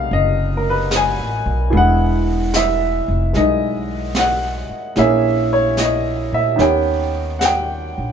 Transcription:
Already playing: C3 A3 B3 D#4 F5 F#5
0.10 F#1 D#5, brush sweep
0.57 A#4
0.70 B4
0.91 snare, hi-hat pedal
0.96 G#5
1.19 A1
1.46 B1
1.70 E1 E3 G#3 B3, brush sweep
1.75 E4 F#5
2.54 E5, snare, hi-hat pedal
3.08 F1
3.33 B1 G#3 D#4 D#5, brush sweep, snare
4.15 F#5, snare, hi-hat pedal
4.70 muted upright bass stroke
4.96 A#1 E3 A#3 C#4 G#4 E5, brush sweep, snare
5.53 C#5
5.77 D#5, snare, hi-hat pedal
6.32 A#2 E5
6.56 D#2 D#3 B3 C#4, brush sweep, snare
6.61 G4 G5
7.39 F#5, snare, hi-hat pedal
7.45 G5
7.98 A#1

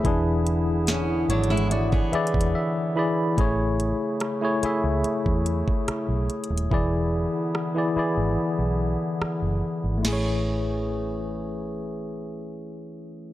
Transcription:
Already playing: E4 G#4
0.04 E1 D3 E3 B3 D4 E4 G#4, kick, closed hi-hat
0.47 closed hi-hat
0.87 E3 C#4, snare, closed hi-hat
1.29 G#1 F#3 D4 C#5, closed hi-hat
1.44 closed hi-hat
1.50 G#3 E4
1.57 closed hi-hat
1.71 F#4 D5, closed hi-hat
1.92 B3 G#4, kick
2.11 E3 E4 G#4 D5 E5, muted fingered electric bass stroke, closed hi-hat
2.27 closed hi-hat
2.34 E1, kick
2.41 closed hi-hat
2.55 E5
2.95 E3 E4 G#4 D5 B5
3.37 A1 C#3 A3 E4 G#4 C#5, kick, closed hi-hat
3.80 closed hi-hat
4.20 cross-stick, closed hi-hat
4.41 A3 E4 G#4 C#5
4.62 A3 E4 G#4 E5, muted fingered electric bass stroke, closed hi-hat
4.84 C#2
5.04 muted fingered electric bass stroke, closed hi-hat
5.26 E2, kick
5.46 closed hi-hat
5.68 kick
5.88 muted fingered electric bass stroke, cross-stick, closed hi-hat
6.09 B1
6.30 closed hi-hat
6.44 closed hi-hat
6.50 D#1
6.58 closed hi-hat
6.70 E1 D3 E3 B3 E4 G#4 D5, kick
7.55 cross-stick
7.75 E3 E4 G#4 D5
7.95 E3 E4 G#4 D5, muted fingered electric bass stroke
8.17 G#1
8.38 muted fingered electric bass stroke
8.59 B1
9.21 muted fingered electric bass stroke, cross-stick
9.42 F#1
9.84 G#1
9.98 A3
10.03 A1 E3 A3 C#4 E4 G#4, snare, crash
10.08 G#4
10.13 C#5

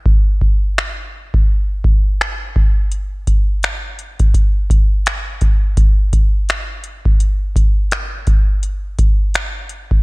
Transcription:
0.06 kick
0.41 kick
0.78 finger snap
1.34 kick
1.84 kick
2.21 finger snap
2.56 kick
2.92 closed hi-hat
3.27 kick, closed hi-hat
3.63 finger snap, closed hi-hat
3.99 closed hi-hat
4.19 kick, closed hi-hat
4.34 kick, closed hi-hat
4.70 kick, closed hi-hat
5.06 finger snap, closed hi-hat
5.41 kick, closed hi-hat
5.77 kick, closed hi-hat
6.13 kick, closed hi-hat
6.49 finger snap, closed hi-hat
6.84 closed hi-hat
7.05 kick
7.20 closed hi-hat
7.56 kick, closed hi-hat
7.91 finger snap, closed hi-hat
8.27 kick, closed hi-hat
8.63 closed hi-hat
8.99 kick, closed hi-hat
9.34 finger snap, closed hi-hat
9.69 closed hi-hat
9.91 kick

